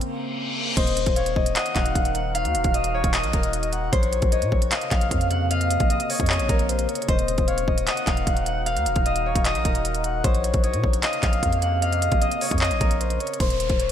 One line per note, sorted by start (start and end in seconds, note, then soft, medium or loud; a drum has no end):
0.00 0.74 C#3 medium
0.00 0.74 A#3 medium
0.00 0.74 C4 medium
0.00 closed hi-hat medium
0.00 reverse cymbal medium
0.77 1.05 D#1 loud
0.77 3.90 D#3 medium
0.77 3.90 D#4 medium
0.77 3.90 F#4 medium
0.77 3.90 A#4 medium
0.77 1.23 C5 loud
0.77 1.14 D#5 loud
0.77 kick loud
0.77 closed hi-hat medium
0.77 crash loud
0.87 closed hi-hat medium
0.97 closed hi-hat medium
1.06 1.35 D#1 loud
1.06 kick loud
1.06 closed hi-hat soft
1.16 2.94 C#5 medium
1.16 1.35 F5 medium
1.16 closed hi-hat medium
1.26 closed hi-hat medium
1.36 1.55 D#1 loud
1.36 1.55 D#5 medium
1.36 kick medium
1.46 closed hi-hat medium
1.56 2.74 D#5 medium
1.56 2.31 F#5 loud
1.56 clap loud
1.56 closed hi-hat medium
1.66 closed hi-hat medium
1.76 1.95 D#1 loud
1.76 2.21 F5 medium
1.76 kick medium
1.76 clap medium
1.76 closed hi-hat medium
1.86 closed hi-hat medium
1.95 2.46 D#1 loud
1.95 kick loud
1.95 closed hi-hat medium
2.05 closed hi-hat medium
2.15 2.41 F#5 medium
2.15 closed hi-hat medium
2.35 3.10 F5 loud
2.35 4.01 F5 loud
2.35 closed hi-hat medium
2.45 2.56 D#2 loud
2.45 closed hi-hat medium
2.55 2.64 D#1 loud
2.55 closed hi-hat medium
2.64 3.02 D#1 loud
2.64 kick loud
2.64 closed hi-hat medium
2.74 3.13 D#5 medium
2.74 closed hi-hat medium
2.84 closed hi-hat medium
2.94 3.98 C#5 medium
3.04 3.25 D#1 loud
3.04 kick loud
3.04 closed hi-hat medium
3.13 4.71 D#5 medium
3.13 3.69 D#5 medium
3.13 clap loud
3.13 closed hi-hat medium
3.23 3.33 A#1 loud
3.23 closed hi-hat medium
3.33 3.90 D#1 loud
3.33 5.46 A#4 medium
3.33 kick loud
3.33 closed hi-hat medium
3.43 closed hi-hat medium
3.53 closed hi-hat medium
3.63 closed hi-hat medium
3.73 3.92 F#5 medium
3.73 closed hi-hat medium
3.92 4.21 A#1 loud
3.92 7.05 C3 medium
3.92 7.05 C#3 medium
3.92 7.05 A#3 medium
3.92 4.38 C5 loud
3.92 4.30 C#5 loud
3.92 kick loud
3.92 closed hi-hat medium
4.03 closed hi-hat medium
4.13 closed hi-hat medium
4.22 4.44 A#1 loud
4.22 kick loud
4.22 closed hi-hat soft
4.32 6.10 C#5 medium
4.32 4.51 D#5 medium
4.32 closed hi-hat medium
4.42 4.51 A#2 loud
4.42 closed hi-hat medium
4.52 4.71 A#1 loud
4.52 4.71 C#5 medium
4.52 kick medium
4.62 closed hi-hat medium
4.71 5.89 D#5 medium
4.71 5.46 F5 medium
4.71 clap loud
4.71 closed hi-hat medium
4.81 closed hi-hat medium
4.91 5.10 A#1 loud
4.91 5.37 F5 medium
4.91 kick loud
4.91 clap medium
4.91 closed hi-hat medium
5.01 closed hi-hat medium
5.11 5.77 F2 loud
5.11 kick loud
5.11 closed hi-hat medium
5.21 closed hi-hat medium
5.31 5.57 F#5 medium
5.31 closed hi-hat medium
5.51 6.26 D#5 loud
5.51 7.17 F5 loud
5.51 closed hi-hat medium
5.61 closed hi-hat medium
5.71 closed hi-hat medium
5.80 5.99 A#1 loud
5.80 kick loud
5.80 closed hi-hat medium
5.90 6.29 D#5 medium
5.90 closed hi-hat medium
6.00 closed hi-hat medium
6.10 7.14 C#5 medium
6.10 open hi-hat medium
6.20 6.41 F2 loud
6.20 kick loud
6.20 closed hi-hat medium
6.26 6.66 C#5 medium
6.26 7.87 D#5 loud
6.26 clap loud
6.26 closed hi-hat medium
6.33 closed hi-hat medium
6.39 6.49 A1 loud
6.39 closed hi-hat medium
6.49 6.87 A#1 loud
6.49 8.61 A#4 medium
6.49 kick loud
6.49 closed hi-hat medium
6.59 closed hi-hat medium
6.69 6.88 C5 medium
6.69 closed hi-hat medium
6.79 closed hi-hat medium
6.89 7.08 C#5 medium
6.89 closed hi-hat medium
6.95 closed hi-hat medium
7.02 closed hi-hat medium
7.08 7.37 D#1 loud
7.08 10.21 D#3 medium
7.08 10.21 D#4 medium
7.08 10.21 F#4 medium
7.08 10.21 A#4 medium
7.08 7.54 C5 loud
7.08 7.46 D#5 loud
7.08 kick loud
7.08 closed hi-hat medium
7.19 closed hi-hat medium
7.28 closed hi-hat medium
7.38 7.67 D#1 loud
7.38 kick loud
7.38 closed hi-hat soft
7.48 9.26 C#5 medium
7.48 7.67 F5 medium
7.48 closed hi-hat medium
7.58 closed hi-hat medium
7.68 7.87 D#1 loud
7.68 7.87 D#5 medium
7.68 kick medium
7.78 closed hi-hat medium
7.87 9.06 D#5 medium
7.87 8.63 F#5 loud
7.87 clap loud
7.87 closed hi-hat medium
7.97 closed hi-hat medium
8.07 8.26 D#1 loud
8.07 8.53 F5 medium
8.07 kick loud
8.07 clap medium
8.07 closed hi-hat medium
8.17 closed hi-hat medium
8.27 8.78 D#1 loud
8.27 kick loud
8.27 closed hi-hat medium
8.37 closed hi-hat medium
8.46 8.72 F#5 medium
8.46 closed hi-hat medium
8.66 9.41 F5 loud
8.66 10.33 F5 loud
8.66 closed hi-hat medium
8.76 8.88 D#2 loud
8.76 closed hi-hat medium
8.86 8.95 D#1 loud
8.86 closed hi-hat medium
8.96 9.34 D#1 loud
8.96 kick loud
8.96 closed hi-hat soft
9.06 9.45 D#5 medium
9.06 closed hi-hat medium
9.16 closed hi-hat medium
9.26 10.30 C#5 medium
9.35 9.57 D#1 loud
9.35 kick loud
9.35 closed hi-hat medium
9.45 11.03 D#5 medium
9.45 10.01 D#5 medium
9.45 clap loud
9.45 closed hi-hat medium
9.55 9.65 A#1 loud
9.55 closed hi-hat medium
9.65 10.22 D#1 loud
9.65 11.77 A#4 medium
9.65 kick loud
9.65 closed hi-hat medium
9.75 closed hi-hat medium
9.85 closed hi-hat medium
9.94 closed hi-hat medium
10.04 10.23 F#5 medium
10.04 closed hi-hat medium
10.24 10.53 A#1 loud
10.24 13.37 C3 medium
10.24 13.37 C#3 medium
10.24 13.37 A#3 medium
10.24 10.70 C5 loud
10.24 10.62 C#5 loud
10.24 kick loud
10.24 closed hi-hat medium
10.34 closed hi-hat medium
10.44 closed hi-hat medium
10.54 10.75 A#1 loud
10.54 kick loud
10.54 closed hi-hat soft
10.64 12.41 C#5 medium
10.64 10.83 D#5 medium
10.64 closed hi-hat medium
10.74 10.83 A#2 loud
10.74 closed hi-hat medium
10.84 11.02 A#1 loud
10.84 11.02 C#5 medium
10.84 kick medium
10.93 closed hi-hat medium
11.03 12.21 D#5 medium
11.03 11.78 F5 medium
11.03 clap loud
11.03 closed hi-hat medium
11.13 closed hi-hat medium
11.23 11.42 A#1 loud
11.23 11.68 F5 medium
11.23 kick loud
11.23 clap medium
11.23 closed hi-hat medium
11.33 closed hi-hat medium
11.43 12.09 F2 loud
11.43 kick loud
11.43 closed hi-hat medium
11.52 closed hi-hat medium
11.62 11.88 F#5 medium
11.62 closed hi-hat medium
11.82 12.57 D#5 loud
11.82 13.49 F5 loud
11.82 closed hi-hat medium
11.92 closed hi-hat medium
12.02 closed hi-hat medium
12.12 12.31 A#1 loud
12.12 kick loud
12.12 closed hi-hat soft
12.22 12.61 D#5 medium
12.22 closed hi-hat medium
12.31 closed hi-hat medium
12.41 13.46 C#5 medium
12.41 open hi-hat medium
12.51 12.73 F2 loud
12.51 kick loud
12.51 closed hi-hat medium
12.58 12.98 C#5 medium
12.58 13.92 D#5 medium
12.58 clap loud
12.58 closed hi-hat medium
12.64 closed hi-hat medium
12.71 12.80 A1 loud
12.71 closed hi-hat medium
12.80 13.19 A#1 loud
12.80 13.92 A#4 medium
12.80 kick loud
12.80 closed hi-hat medium
12.91 closed hi-hat medium
13.01 13.19 C5 medium
13.01 closed hi-hat medium
13.10 closed hi-hat medium
13.20 13.39 C#5 medium
13.20 closed hi-hat medium
13.27 closed hi-hat medium
13.34 closed hi-hat medium
13.40 13.69 D#1 loud
13.40 13.86 C5 loud
13.40 kick loud
13.40 closed hi-hat medium
13.40 downlifter medium
13.50 closed hi-hat medium
13.60 closed hi-hat medium
13.69 13.92 D#1 loud
13.69 kick loud
13.69 closed hi-hat soft
13.80 13.92 C#5 medium
13.80 closed hi-hat medium